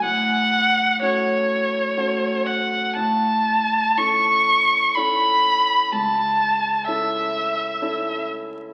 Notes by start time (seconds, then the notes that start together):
0.03 A2 F#5
1.01 A3 C#4 F#4 C#5
1.97 A3 C#4 F#4
2.46 F#5
2.96 A2 A5
3.97 C#4 E4 A4 C#6
4.95 C#4 E4 A4 B5
5.92 C#2 A5
6.87 C#4 E4 A4 E5
7.82 C#4 E4 A4